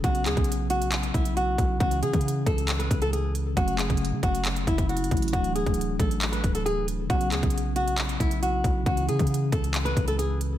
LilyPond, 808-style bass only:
\new Staff \with { instrumentName = "808-style bass" } { \clef bass \time 4/4 \key b \dorian \tempo 4 = 136 b,,8 d,16 b,,4.~ b,,16 b,,4 b,,8 | cis,8 cis16 cis8. cis,4 cis,4. | fis,,8. fis,,8 cis16 fis,,4 fis,,4 a,,8 | d,,8. d,,8. a,,4 d,,4. |
b,,8 d,16 b,,4.~ b,,16 b,,4 b,,8 | cis,8 cis16 cis8. cis,4 cis,4. | }